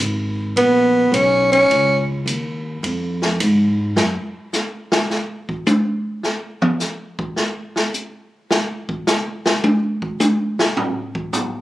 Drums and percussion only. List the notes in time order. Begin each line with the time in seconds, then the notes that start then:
0.00 hi-hat pedal, ride
0.57 ride
1.14 hi-hat pedal, ride
1.53 ride
1.71 ride
2.27 hi-hat pedal, ride
2.84 ride
3.22 snare
3.40 hi-hat pedal, ride
3.97 snare
4.53 snare, hi-hat pedal
4.92 snare
5.10 snare
5.49 kick
5.67 hi-hat pedal, high tom
6.23 snare
6.62 mid tom
6.80 snare, hi-hat pedal
7.19 kick
7.36 snare
7.76 snare
7.94 hi-hat pedal
8.51 snare
8.89 kick
9.07 snare, hi-hat pedal
9.46 snare
9.64 high tom
10.02 kick
10.20 hi-hat pedal, high tom
10.59 snare
10.77 floor tom
11.15 kick
11.33 floor tom, hi-hat pedal